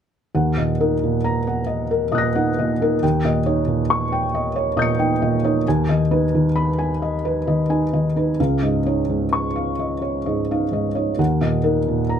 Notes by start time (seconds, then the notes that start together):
0.35 D#2 F#5
0.57 A#2 D#5
0.80 D#4 A#4
1.03 A#2
1.24 A#5
1.47 F#5
1.67 D#5
1.91 A#4
2.12 A#2 D#5 D#6 F#6
2.18 A#6
2.35 D#4 F#5
2.59 A#2 D#5
2.82 D#4 A#4
3.03 D#2 G5
3.25 A#2 D#5
3.46 D#4 C#5
3.67 A#2
3.90 C#6
4.12 G5
4.35 D#5
4.56 C#5
4.77 A#2 D#5 D#6 G6
4.82 C#7
4.99 D#4 G5
5.22 A#2 D#5
5.44 D#4 C#5
5.68 D#2 G#5
5.89 D#3 D#5
6.11 D#4 B4
6.35 D#3
6.56 B5
6.79 G#5
7.02 D#5
7.25 B4
7.47 D#3 D#5
7.70 D#4 G#5
7.93 D#3 D#5
8.16 D#4 B4
8.40 C#2 F5
8.63 G#2 D#5
8.86 D#4 C#5
9.10 G#2
9.33 C#6
9.56 F5
9.79 D#5
10.02 C#5
10.26 G#2 D#5
10.51 D#4 F5
10.72 G#2 D#5
10.95 D#4 C#5
11.19 D#2 F#5
11.41 A#2 D#5
11.64 D#4 A#4
11.88 A#2
12.09 A#5